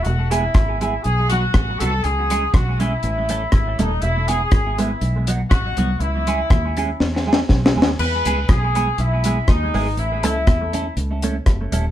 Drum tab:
CC |------------------------|------------------------|------------------------|------------------------|
HH |x--x--x--x--x--x--x--x--|x--x--x--x--x--x--x--x--|x--x--x--x--x--x--x--x--|x--x--x--x--------------|
SD |------r-----------r-----|------r-----------r-----|------r-----------r-----|------r-----o-o-o-o-o-o-|
BD |------o-----------o-----|------o-----------o-----|------o-----------o-----|------o-----------o-----|

CC |x-----------------------|------------------------|
HH |---x--x--x--x--x--x--o--|x--x--x--x--x--x--x--x--|
SD |------r-----------r-----|------r-----------r-----|
BD |------o-----------o-----|------o-----------o-----|